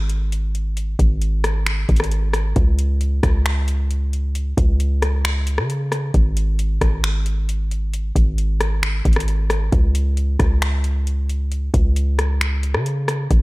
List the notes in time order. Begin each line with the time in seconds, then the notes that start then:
Already playing: G#1
0.10 closed hi-hat
0.32 closed hi-hat
0.55 closed hi-hat
0.77 closed hi-hat
0.99 G#1, kick, closed hi-hat
1.22 closed hi-hat
1.44 cross-stick, closed hi-hat
1.66 finger snap, closed hi-hat
1.89 G#1, kick, closed hi-hat
1.96 cross-stick, closed hi-hat
2.04 closed hi-hat
2.11 closed hi-hat
2.33 cross-stick, closed hi-hat
2.56 C#2, kick, closed hi-hat
2.79 closed hi-hat
3.01 closed hi-hat
3.23 C#2, kick, cross-stick, closed hi-hat
3.46 finger snap, closed hi-hat
3.68 closed hi-hat
3.91 closed hi-hat
4.13 closed hi-hat
4.35 closed hi-hat
4.57 C#2, kick, closed hi-hat
4.80 closed hi-hat
5.02 cross-stick, closed hi-hat
5.25 finger snap, closed hi-hat
5.47 closed hi-hat
5.58 C#3, cross-stick
5.70 closed hi-hat
5.92 cross-stick, closed hi-hat
6.14 G#1, kick, closed hi-hat
6.37 closed hi-hat
6.59 closed hi-hat
6.81 G#1, kick, cross-stick, closed hi-hat
7.04 finger snap, closed hi-hat
7.26 closed hi-hat
7.49 closed hi-hat
7.71 closed hi-hat
7.94 closed hi-hat
8.16 G#1, kick, closed hi-hat
8.38 closed hi-hat
8.61 cross-stick, closed hi-hat
8.83 finger snap, closed hi-hat
9.05 G#1, kick, closed hi-hat
9.13 cross-stick, closed hi-hat
9.20 closed hi-hat
9.28 closed hi-hat
9.50 cross-stick, closed hi-hat
9.72 C#2, kick, closed hi-hat
9.95 closed hi-hat
10.17 closed hi-hat
10.39 C#2, kick, cross-stick, closed hi-hat
10.62 finger snap, closed hi-hat
10.84 closed hi-hat
11.07 closed hi-hat
11.29 closed hi-hat
11.52 closed hi-hat
11.74 C#2, kick, closed hi-hat
11.96 closed hi-hat
12.19 cross-stick, closed hi-hat
12.41 finger snap, closed hi-hat
12.63 closed hi-hat
12.74 C#3, cross-stick
12.86 closed hi-hat
13.08 cross-stick, closed hi-hat
13.31 G#1, kick, closed hi-hat